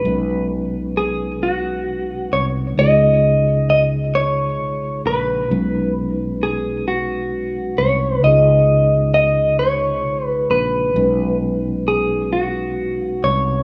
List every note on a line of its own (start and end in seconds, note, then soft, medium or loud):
0.00 2.71 B2 medium
0.00 2.72 F#3 soft
0.00 0.47 B4 medium
0.04 2.28 B1 medium
0.04 2.73 G#3 soft
0.04 2.74 C#4 soft
0.04 2.74 D#4 medium
0.08 2.75 B4 medium
0.97 1.38 G#4 medium
1.43 2.35 F#4 medium
2.33 2.73 C2 medium
2.33 2.45 C#5 medium
2.74 5.44 C#3 medium
2.74 5.45 G#3 soft
2.74 5.46 D#4 soft
2.78 4.61 C#2 medium
2.78 5.47 F4 medium
2.78 5.47 G#4 medium
2.78 3.69 D#5 medium
3.70 3.82 D#5 medium
4.15 5.01 C#5 medium
4.61 5.01 B1 medium
5.06 5.46 A#1 medium
5.06 5.92 B4 medium
5.47 8.17 B2 medium
5.47 8.18 F#3 medium
5.47 8.18 G#3 medium
5.51 7.74 B1 medium
5.51 8.19 C#4 medium
5.51 8.20 D#4 medium
5.51 8.20 B4 medium
6.43 6.87 G#4 medium
6.88 7.80 F#4 medium
7.78 8.19 C2 medium
7.78 8.24 C#5 medium
8.20 10.90 C#3 medium
8.20 10.90 G#3 soft
8.20 10.91 D#4 soft
8.24 10.05 C#2 medium
8.24 10.92 F4 soft
8.24 10.93 G#4 medium
8.24 9.13 D#5 medium
9.14 9.59 D#5 medium
9.59 10.25 C#5 medium
10.05 10.46 B1 medium
10.25 10.50 B4 medium
10.50 10.91 A#1 medium
10.50 11.37 B4 medium
10.93 13.19 B1 medium
10.93 13.63 B2 soft
10.93 13.63 F#3 soft
10.93 13.63 G#3 soft
10.93 13.63 C#4 medium
10.98 13.63 D#4 medium
10.98 13.63 B4 medium
11.88 12.32 G#4 medium
12.33 13.25 F#4 medium
13.24 13.63 C2 medium
13.24 13.63 C#5 medium